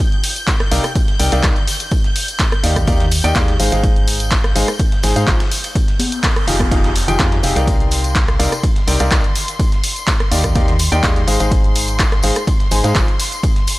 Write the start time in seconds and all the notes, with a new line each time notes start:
Already playing: G6
0.00 ride
0.12 closed hi-hat
0.23 open hi-hat, ride, tambourine
0.36 closed hi-hat, tambourine
0.47 kick, snare, clap, closed hi-hat, ride, tambourine
0.60 cross-stick, snare, closed hi-hat
0.71 C2 C3 D#4 A#4 D5 F5, open hi-hat, ride, tambourine
0.84 cross-stick, closed hi-hat, tambourine
0.95 kick, closed hi-hat, ride, tambourine
1.08 snare, closed hi-hat
1.19 C2 C3 D#4 A#4 D5 G5, open hi-hat, ride, tambourine
1.32 C2 C3 D#4 A#4 D5 F5, snare, closed hi-hat, tambourine
1.43 C2, kick, snare, clap, closed hi-hat, ride, tambourine
1.56 closed hi-hat
1.67 open hi-hat, ride, tambourine
1.80 closed hi-hat, tambourine
1.91 kick, closed hi-hat, ride, tambourine
2.04 snare, closed hi-hat
2.16 open hi-hat, ride, tambourine
2.28 closed hi-hat, tambourine
2.39 kick, snare, clap, closed hi-hat, ride, tambourine
2.52 cross-stick, closed hi-hat
2.63 D#2 D#3 D#4 G4 D5 F5, open hi-hat, ride, tambourine
2.76 kick, cross-stick, closed hi-hat, tambourine
2.87 D#2 D#3 D#4 G4 D5 F5, kick, closed hi-hat, ride, tambourine
3.00 snare, closed hi-hat
3.11 open hi-hat, ride, tambourine
3.24 D#2 D#3 D#4 G4 D5 G5, closed hi-hat, tambourine
3.35 D#2 D#4 F5, kick, snare, clap, closed hi-hat, ride, tambourine
3.48 snare, closed hi-hat
3.59 G#1 G#3 D#4 G#4 C5 F5, open hi-hat, ride, tambourine
3.72 G#1 G#3 D#4 G#4 C5 F5, closed hi-hat, tambourine
3.84 kick, closed hi-hat, ride, tambourine
3.96 closed hi-hat
4.07 open hi-hat, ride, tambourine
4.20 closed hi-hat, tambourine
4.31 kick, snare, clap, closed hi-hat, ride, tambourine
4.44 cross-stick, snare, closed hi-hat
4.55 G#1 G#3 D#4 G#4 C5 F5, open hi-hat, ride, tambourine
4.68 cross-stick, closed hi-hat, tambourine
4.79 kick, closed hi-hat, ride, tambourine
4.92 snare, closed hi-hat
5.03 G#1 G#3 D#4 G#4 C5 G#5, snare, open hi-hat, ride, tambourine
5.16 G#2 G#3 D#4 G#4 C5 F5, snare, closed hi-hat, tambourine
5.27 G#1 D#4 G#4 C5 F5, kick, clap, closed hi-hat, ride, tambourine
5.40 snare, closed hi-hat, ride
5.51 snare, open hi-hat, tambourine
5.64 closed hi-hat, ride, tambourine
5.75 kick, closed hi-hat, ride, tambourine, noise sweep
5.88 snare, closed hi-hat
5.99 open hi-hat, ride, tambourine, high conga
6.12 closed hi-hat, tambourine
6.23 kick, snare, clap, closed hi-hat, ride, tambourine
6.36 cross-stick, closed hi-hat
6.47 F1 F3 D#4 G4 G#4 F5, open hi-hat, ride, tambourine
6.60 kick, cross-stick, tambourine, high conga
6.71 F1 F3 D#4 G4 G#4 F5, kick, closed hi-hat, ride, tambourine
6.84 snare, closed hi-hat
6.95 open hi-hat, ride, tambourine
7.08 F1 F3 D#4 G4 G#4 G5, closed hi-hat, tambourine
7.19 F2 F3 G4 F5, kick, snare, clap, closed hi-hat, ride
7.32 snare, closed hi-hat
7.43 F1 C3 D#4 G4 G#4 F5, open hi-hat, ride, tambourine
7.56 C2 C3 D#4 A#4 D5 F5, closed hi-hat, tambourine
7.67 C6, kick, closed hi-hat, ride, tambourine
7.80 closed hi-hat
7.91 open hi-hat, ride, tambourine
8.04 closed hi-hat, tambourine
8.15 kick, snare, clap, closed hi-hat, ride
8.28 cross-stick, snare, closed hi-hat
8.39 C2 C3 D#4 A#4 D5 F5, open hi-hat, ride, tambourine
8.52 cross-stick, closed hi-hat, tambourine
8.63 kick, closed hi-hat, ride, tambourine
8.76 snare, closed hi-hat
8.87 C2 C3 D#4 A#4 D5 G5, open hi-hat, ride, tambourine
8.99 C2 C3 D#4 A#4 D5 F5, snare, closed hi-hat, tambourine
9.11 C2 D#3 D#4, kick, snare, clap, closed hi-hat, ride, tambourine
9.24 closed hi-hat
9.35 open hi-hat, ride, tambourine
9.48 closed hi-hat, tambourine
9.59 kick, closed hi-hat, ride, tambourine
9.72 snare, closed hi-hat
9.84 open hi-hat, ride, tambourine
9.96 closed hi-hat, tambourine
10.07 kick, snare, clap, closed hi-hat, ride, tambourine
10.20 cross-stick, closed hi-hat
10.31 D#2 D#3 D#4 G4 D5 F5, open hi-hat, ride, tambourine
10.44 kick, cross-stick, closed hi-hat, tambourine
10.55 D#2 D#3 D#4 G4 D5 F5, kick, closed hi-hat, ride, tambourine
10.68 snare, closed hi-hat
10.79 open hi-hat, ride, tambourine
10.92 D#2 D#3 D#4 G4 D5 G5, closed hi-hat, tambourine
11.03 D#2 G#3 D#4 G4 D5 F5, kick, snare, clap, closed hi-hat, ride, tambourine
11.16 snare, closed hi-hat
11.27 G#1 G#3 D#4 G#4 C5 F5, open hi-hat, ride, tambourine
11.40 G#1 G#3 D#4 G#4 C5 F5, closed hi-hat, tambourine
11.51 kick, closed hi-hat, ride, tambourine
11.64 closed hi-hat
11.75 open hi-hat, ride, tambourine
11.87 closed hi-hat, tambourine
11.99 kick, snare, clap, closed hi-hat, ride, tambourine
12.12 cross-stick, snare, closed hi-hat
12.23 G#1 G#3 D#4 G#4 C5 F5, open hi-hat, ride, tambourine
12.35 cross-stick, closed hi-hat, tambourine
12.47 kick, closed hi-hat, ride, tambourine
12.60 snare, closed hi-hat
12.71 G#1 G#3 D#4 G#4 C5 G#5, open hi-hat, ride, tambourine
12.84 G#2 G#3 D#4 G#4 C5 F5, snare, closed hi-hat, tambourine
12.95 G#1 D#4 G#4, kick, snare, clap, closed hi-hat, ride, tambourine
13.08 closed hi-hat
13.20 open hi-hat, ride, tambourine
13.32 closed hi-hat, tambourine
13.43 kick, closed hi-hat, ride, tambourine
13.56 snare, closed hi-hat
13.67 open hi-hat, ride, tambourine